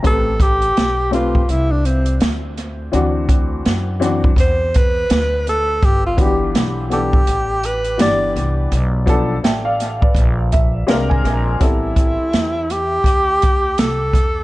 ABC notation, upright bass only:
X:1
M:4/4
L:1/16
Q:"Swing 16ths" 1/4=83
K:Am
V:1 name="Upright bass" clef=bass
A,,,4 B,,,4 C,,4 D,,4 | D,,4 ^F,,4 E,,4 D,,4 | G,,,4 B,,,4 A,,,4 G,,,2 C,,2 | B,,,4 A,,,4 _B,,,4 C,,2 B,,,2 |
A,,,3 z E,,4 D,,4 C,,2 E,,2 |]